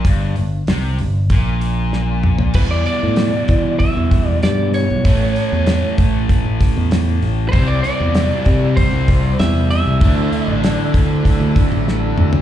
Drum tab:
CC |----------------|x---------------|----------------|----------------|
HH |o-o-o-o-o-o-----|--o-o-o-o-o-o-o-|o-o-o-o-o-o-o-o-|o-o-o-o-o-o-o-o-|
SD |----o-------o---|----o-------o---|----o-----o-o---|----o-------o---|
T2 |--------------o-|----------------|----------------|----------------|
FT |---------------o|----------------|----------------|----------------|
BD |o-------o-------|o-----o-o-o-----|o-----o-o-o-----|o-----o-o-o-----|

CC |----------------|
HH |o-o-o-o-o-o-----|
SD |----o-------o---|
T2 |--------------o-|
FT |---------------o|
BD |o-----o-o-o-----|